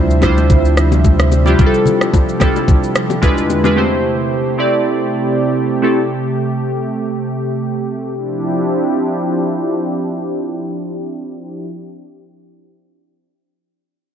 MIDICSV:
0, 0, Header, 1, 5, 480
1, 0, Start_track
1, 0, Key_signature, -1, "minor"
1, 0, Tempo, 545455
1, 1398, Time_signature, 4, 2, 24, 8
1, 12451, End_track
2, 0, Start_track
2, 0, Title_t, "Synth keys"
2, 0, Program_c, 0, 88
2, 0, Control_c, 0, 64, 127
2, 0, Note_on_c, 0, 55, 89
2, 0, Note_on_c, 0, 62, 79
2, 0, Note_on_c, 0, 64, 75
2, 0, Note_on_c, 0, 65, 77
2, 0, Note_on_c, 0, 72, 95
2, 98, Note_off_c, 0, 72, 0
2, 189, Note_off_c, 0, 55, 0
2, 189, Note_on_c, 0, 55, 87
2, 192, Note_off_c, 0, 62, 0
2, 192, Note_on_c, 0, 62, 77
2, 198, Note_off_c, 0, 64, 0
2, 198, Note_on_c, 0, 64, 80
2, 202, Note_off_c, 0, 65, 0
2, 202, Note_on_c, 0, 65, 78
2, 207, Note_on_c, 0, 72, 98
2, 966, Note_off_c, 0, 55, 0
2, 968, Note_off_c, 0, 62, 0
2, 971, Note_off_c, 0, 64, 0
2, 973, Note_off_c, 0, 65, 0
2, 975, Note_off_c, 0, 72, 0
2, 1282, Note_on_c, 0, 55, 89
2, 1285, Note_on_c, 0, 62, 83
2, 1290, Note_on_c, 0, 64, 82
2, 1295, Note_on_c, 0, 65, 85
2, 1299, Note_on_c, 0, 67, 93
2, 1373, Note_off_c, 0, 55, 0
2, 1374, Note_off_c, 0, 62, 0
2, 1377, Note_off_c, 0, 64, 0
2, 1379, Note_off_c, 0, 65, 0
2, 1381, Note_off_c, 0, 67, 0
2, 1389, Note_on_c, 0, 55, 85
2, 1394, Note_on_c, 0, 62, 77
2, 1398, Note_on_c, 0, 64, 77
2, 1403, Note_on_c, 0, 65, 78
2, 1407, Note_on_c, 0, 67, 76
2, 1464, Note_on_c, 0, 69, 97
2, 1465, Note_off_c, 0, 67, 0
2, 1979, Note_off_c, 0, 55, 0
2, 1981, Note_off_c, 0, 62, 0
2, 1984, Note_off_c, 0, 64, 0
2, 1986, Note_off_c, 0, 65, 0
2, 2017, Note_off_c, 0, 69, 0
2, 2109, Note_on_c, 0, 55, 87
2, 2115, Note_on_c, 0, 62, 76
2, 2119, Note_on_c, 0, 64, 79
2, 2124, Note_on_c, 0, 65, 78
2, 2129, Note_on_c, 0, 69, 93
2, 2824, Note_off_c, 0, 62, 0
2, 2828, Note_off_c, 0, 64, 0
2, 2829, Note_on_c, 0, 56, 93
2, 2832, Note_off_c, 0, 65, 0
2, 2834, Note_off_c, 0, 55, 0
2, 2834, Note_on_c, 0, 62, 86
2, 2839, Note_on_c, 0, 64, 84
2, 2843, Note_off_c, 0, 69, 0
2, 2843, Note_on_c, 0, 65, 84
2, 2849, Control_c, 0, 64, 0
2, 2849, Note_on_c, 0, 71, 101
2, 2999, Control_c, 0, 64, 127
2, 3126, Note_off_c, 0, 56, 0
2, 3129, Note_off_c, 0, 62, 0
2, 3131, Note_off_c, 0, 64, 0
2, 3133, Note_off_c, 0, 65, 0
2, 3136, Note_off_c, 0, 71, 0
2, 3201, Note_on_c, 0, 56, 93
2, 3205, Note_on_c, 0, 62, 84
2, 3210, Note_on_c, 0, 64, 82
2, 3215, Note_on_c, 0, 65, 81
2, 3219, Note_on_c, 0, 71, 101
2, 3292, Note_off_c, 0, 56, 0
2, 3294, Note_off_c, 0, 62, 0
2, 3296, Note_off_c, 0, 64, 0
2, 3299, Note_off_c, 0, 65, 0
2, 3301, Note_off_c, 0, 71, 0
2, 3310, Note_on_c, 0, 57, 87
2, 3313, Note_on_c, 0, 60, 82
2, 3318, Note_on_c, 0, 64, 78
2, 3323, Note_on_c, 0, 67, 80
2, 3328, Note_on_c, 0, 72, 91
2, 3330, Control_c, 0, 64, 0
2, 3500, Control_c, 0, 64, 127
2, 3899, Note_off_c, 0, 57, 0
2, 3901, Note_off_c, 0, 60, 0
2, 3904, Note_off_c, 0, 64, 0
2, 3906, Note_off_c, 0, 67, 0
2, 3909, Note_off_c, 0, 72, 0
2, 4030, Note_on_c, 0, 57, 82
2, 4034, Note_on_c, 0, 60, 82
2, 4038, Note_on_c, 0, 64, 78
2, 4044, Note_on_c, 0, 67, 77
2, 4048, Note_on_c, 0, 74, 97
2, 4807, Note_off_c, 0, 57, 0
2, 4809, Note_off_c, 0, 60, 0
2, 4811, Note_off_c, 0, 64, 0
2, 4814, Note_off_c, 0, 67, 0
2, 4816, Note_off_c, 0, 74, 0
2, 5123, Note_on_c, 0, 57, 90
2, 5127, Note_on_c, 0, 60, 80
2, 5131, Note_on_c, 0, 64, 81
2, 5137, Note_on_c, 0, 67, 80
2, 5141, Note_on_c, 0, 69, 98
2, 5213, Note_off_c, 0, 57, 0
2, 5215, Note_off_c, 0, 60, 0
2, 5217, Note_off_c, 0, 64, 0
2, 5220, Note_off_c, 0, 67, 0
2, 5222, Note_off_c, 0, 69, 0
2, 5249, Control_c, 0, 64, 0
2, 12451, End_track
3, 0, Start_track
3, 0, Title_t, "Analog synth pad"
3, 0, Program_c, 1, 89
3, 0, Note_on_c, 1, 48, 77
3, 0, Note_on_c, 1, 53, 74
3, 0, Note_on_c, 1, 55, 71
3, 0, Note_on_c, 1, 76, 87
3, 1381, Note_off_c, 1, 76, 0
3, 1401, Note_on_c, 1, 67, 89
3, 2806, Note_off_c, 1, 55, 0
3, 2807, Note_off_c, 1, 48, 0
3, 2807, Note_off_c, 1, 53, 0
3, 2839, Note_on_c, 1, 56, 70
3, 2840, Note_on_c, 1, 40, 70
3, 2840, Note_on_c, 1, 50, 65
3, 3301, Note_off_c, 1, 67, 0
3, 3314, Note_off_c, 1, 40, 0
3, 3314, Note_off_c, 1, 50, 0
3, 3314, Note_off_c, 1, 56, 0
3, 3317, Note_on_c, 1, 48, 79
3, 3317, Note_on_c, 1, 57, 70
3, 3317, Note_on_c, 1, 67, 90
3, 7122, Note_off_c, 1, 48, 0
3, 7122, Note_off_c, 1, 57, 0
3, 7122, Note_off_c, 1, 67, 0
3, 7158, Note_on_c, 1, 60, 71
3, 7158, Note_on_c, 1, 67, 86
3, 7159, Note_on_c, 1, 62, 70
3, 7161, Note_on_c, 1, 53, 78
3, 7162, Note_on_c, 1, 64, 70
3, 10256, Note_off_c, 1, 60, 0
3, 10257, Note_off_c, 1, 67, 0
3, 10258, Note_off_c, 1, 62, 0
3, 10259, Note_off_c, 1, 53, 0
3, 10260, Note_off_c, 1, 64, 0
3, 12451, End_track
4, 0, Start_track
4, 0, Title_t, "Sub bass"
4, 0, Program_c, 2, 38
4, 0, Note_on_c, 2, 38, 79
4, 1363, Note_off_c, 2, 38, 0
4, 12451, End_track
5, 0, Start_track
5, 0, Title_t, "Drums"
5, 92, Note_on_c, 9, 82, 54
5, 180, Note_off_c, 9, 82, 0
5, 192, Note_on_c, 9, 61, 79
5, 198, Note_on_c, 9, 82, 89
5, 201, Note_on_c, 9, 36, 89
5, 203, Note_on_c, 9, 37, 79
5, 280, Note_off_c, 9, 61, 0
5, 286, Note_off_c, 9, 82, 0
5, 289, Note_off_c, 9, 36, 0
5, 291, Note_off_c, 9, 37, 0
5, 330, Note_on_c, 9, 82, 43
5, 334, Note_on_c, 9, 60, 58
5, 418, Note_off_c, 9, 82, 0
5, 422, Note_off_c, 9, 60, 0
5, 439, Note_on_c, 9, 36, 118
5, 441, Note_on_c, 9, 82, 72
5, 445, Note_on_c, 9, 64, 68
5, 527, Note_off_c, 9, 36, 0
5, 529, Note_off_c, 9, 82, 0
5, 533, Note_off_c, 9, 64, 0
5, 573, Note_on_c, 9, 82, 48
5, 661, Note_off_c, 9, 82, 0
5, 679, Note_on_c, 9, 82, 88
5, 680, Note_on_c, 9, 37, 93
5, 767, Note_off_c, 9, 82, 0
5, 768, Note_off_c, 9, 37, 0
5, 808, Note_on_c, 9, 61, 71
5, 812, Note_on_c, 9, 82, 54
5, 896, Note_off_c, 9, 61, 0
5, 900, Note_off_c, 9, 82, 0
5, 919, Note_on_c, 9, 36, 90
5, 919, Note_on_c, 9, 82, 78
5, 922, Note_on_c, 9, 60, 65
5, 1007, Note_off_c, 9, 36, 0
5, 1007, Note_off_c, 9, 82, 0
5, 1010, Note_off_c, 9, 60, 0
5, 1050, Note_on_c, 9, 82, 59
5, 1052, Note_on_c, 9, 37, 98
5, 1138, Note_off_c, 9, 82, 0
5, 1140, Note_off_c, 9, 37, 0
5, 1159, Note_on_c, 9, 61, 56
5, 1159, Note_on_c, 9, 82, 96
5, 1247, Note_off_c, 9, 61, 0
5, 1247, Note_off_c, 9, 82, 0
5, 1282, Note_on_c, 9, 61, 65
5, 1293, Note_on_c, 9, 82, 51
5, 1370, Note_off_c, 9, 61, 0
5, 1381, Note_off_c, 9, 82, 0
5, 1396, Note_on_c, 9, 64, 66
5, 1400, Note_on_c, 9, 36, 104
5, 1401, Note_on_c, 9, 82, 90
5, 1484, Note_off_c, 9, 64, 0
5, 1488, Note_off_c, 9, 36, 0
5, 1489, Note_off_c, 9, 82, 0
5, 1534, Note_on_c, 9, 82, 46
5, 1622, Note_off_c, 9, 82, 0
5, 1633, Note_on_c, 9, 64, 69
5, 1641, Note_on_c, 9, 82, 87
5, 1721, Note_off_c, 9, 64, 0
5, 1729, Note_off_c, 9, 82, 0
5, 1771, Note_on_c, 9, 37, 82
5, 1773, Note_on_c, 9, 82, 49
5, 1859, Note_off_c, 9, 37, 0
5, 1861, Note_off_c, 9, 82, 0
5, 1880, Note_on_c, 9, 36, 91
5, 1881, Note_on_c, 9, 60, 78
5, 1884, Note_on_c, 9, 82, 77
5, 1968, Note_off_c, 9, 36, 0
5, 1969, Note_off_c, 9, 60, 0
5, 1972, Note_off_c, 9, 82, 0
5, 2014, Note_on_c, 9, 82, 55
5, 2102, Note_off_c, 9, 82, 0
5, 2112, Note_on_c, 9, 61, 76
5, 2120, Note_on_c, 9, 82, 88
5, 2122, Note_on_c, 9, 36, 84
5, 2125, Note_on_c, 9, 37, 83
5, 2200, Note_off_c, 9, 61, 0
5, 2208, Note_off_c, 9, 82, 0
5, 2210, Note_off_c, 9, 36, 0
5, 2213, Note_off_c, 9, 37, 0
5, 2253, Note_on_c, 9, 82, 45
5, 2255, Note_on_c, 9, 60, 57
5, 2341, Note_off_c, 9, 82, 0
5, 2343, Note_off_c, 9, 60, 0
5, 2359, Note_on_c, 9, 36, 116
5, 2362, Note_on_c, 9, 82, 69
5, 2366, Note_on_c, 9, 64, 68
5, 2447, Note_off_c, 9, 36, 0
5, 2450, Note_off_c, 9, 82, 0
5, 2454, Note_off_c, 9, 64, 0
5, 2495, Note_on_c, 9, 82, 51
5, 2583, Note_off_c, 9, 82, 0
5, 2600, Note_on_c, 9, 82, 84
5, 2601, Note_on_c, 9, 37, 97
5, 2688, Note_off_c, 9, 82, 0
5, 2689, Note_off_c, 9, 37, 0
5, 2727, Note_on_c, 9, 61, 69
5, 2732, Note_on_c, 9, 82, 54
5, 2815, Note_off_c, 9, 61, 0
5, 2820, Note_off_c, 9, 82, 0
5, 2840, Note_on_c, 9, 36, 90
5, 2841, Note_on_c, 9, 82, 73
5, 2842, Note_on_c, 9, 60, 64
5, 2928, Note_off_c, 9, 36, 0
5, 2929, Note_off_c, 9, 82, 0
5, 2930, Note_off_c, 9, 60, 0
5, 2972, Note_on_c, 9, 82, 62
5, 3060, Note_off_c, 9, 82, 0
5, 3080, Note_on_c, 9, 61, 55
5, 3080, Note_on_c, 9, 82, 94
5, 3168, Note_off_c, 9, 61, 0
5, 3168, Note_off_c, 9, 82, 0
5, 3204, Note_on_c, 9, 61, 69
5, 3213, Note_on_c, 9, 82, 53
5, 3292, Note_off_c, 9, 61, 0
5, 3301, Note_off_c, 9, 82, 0
5, 12451, End_track
0, 0, End_of_file